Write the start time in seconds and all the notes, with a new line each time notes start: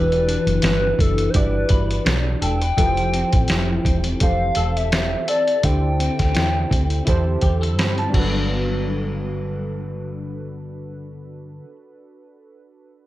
Already playing: E1 E3 D4 F#4 G4 B4
0.12 closed hi-hat
0.27 D4, closed hi-hat
0.47 F#1, closed hi-hat
0.62 G1 E4 B4, snare, closed hi-hat
0.98 F#1 D4 A4, kick, closed hi-hat
1.18 closed hi-hat
1.30 D4 C5
1.34 G1 E4 F#4 G4 B4 D5, kick, closed hi-hat
1.69 G1 B4, kick, closed hi-hat
1.91 closed hi-hat
2.05 B1 D4, snare, closed hi-hat
2.42 E1 A4 G5, closed hi-hat
2.62 B4, closed hi-hat
2.77 F1 F3 E4 G4 A4 B4, kick, closed hi-hat
2.86 C5
2.97 closed hi-hat
3.13 C4, closed hi-hat
3.33 A1, kick, closed hi-hat
3.48 F1 E4, snare, closed hi-hat
3.85 E1 C4, kick, closed hi-hat
4.04 closed hi-hat
4.20 F1 E3 G4 A4 C5 F5, kick, closed hi-hat
4.55 E1 A4, closed hi-hat
4.76 E5, closed hi-hat
4.92 C4, snare, closed hi-hat
5.28 A4 D5, closed hi-hat
5.48 closed hi-hat
5.63 D2 D3 E4 G4 A4 C5 G5, kick, closed hi-hat
5.99 C4, closed hi-hat
6.19 D2, kick, snare, closed hi-hat
6.35 E2 E4, snare, closed hi-hat
6.70 D2 C4, kick, closed hi-hat
6.90 closed hi-hat
7.05 E2 E4 G4 A4 C5, kick, closed hi-hat
7.41 E2 G4, kick, closed hi-hat
7.61 A4, closed hi-hat
7.78 G2 C4 B5, snare, closed hi-hat
7.98 A5, closed hi-hat
8.09 G2 D4
8.13 G1 D3 F#4 A4, kick, crash
8.18 F#3 B3 B4
8.25 D4